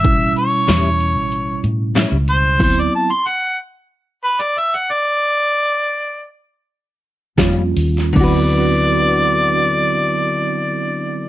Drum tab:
CC |----------------|x---------------|----------------|x---------------|
HH |x-x-x-x-x-x-x-x-|x---------------|------------x-o-|----------------|
SD |----o-------o---|----------------|------------o--o|----------------|
BD |o---------------|o---------------|------------o---|o---------------|